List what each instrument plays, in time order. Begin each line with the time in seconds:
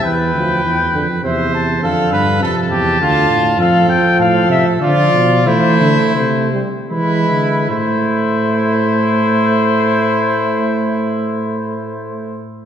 0.04 tuba E2, trombone E3, trumpet B4 G5
0.34 tuba D2, trombone F3
0.64 tuba E2, trombone E3
0.93 tuba F2, trombone D3
1.23 tuba E2, trombone C3, trumpet C5 E5
1.54 trumpet A5
1.82 tuba F2, trombone D3, trumpet A4 F5
2.12 tuba G2, trumpet B4
2.40 tuba F2, trombone C3, trumpet A4 A5
2.71 tuba E2, trumpet G4
3.00 tuba D2, trombone D3, trumpet F4
3.30 tuba A2
3.58 tuba F2, trombone F3, trumpet A4 F5
3.88 tuba F2, trumpet G5
4.19 tuba A2, trumpet A4 F5
4.49 tuba C3, trumpet E5
4.80 tuba D3, trombone F3, trumpet F4 D5
5.13 tuba B2
5.46 tuba E3, trombone A3, trumpet E4 C5
5.81 tuba D3
6.15 tuba C3, trombone A3, trumpet C5
6.53 trombone G3
6.90 tuba E3, trombone G#3, trumpet E4 B4
7.29 tuba D3
7.70 tuba A2, trombone A3, trumpet E4 C5